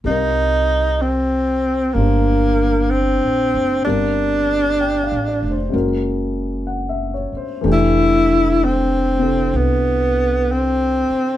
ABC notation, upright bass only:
X:1
M:4/4
L:1/8
Q:"Swing" 1/4=63
K:Fdor
V:1 name="Upright bass" clef=bass
C,,4 G,,,2- (3G,,, B,,, ^F,,, | G,,,2- (3G,,, =A,,, F,,, ^F,,,3 z | F,,,4 C,,3 z |]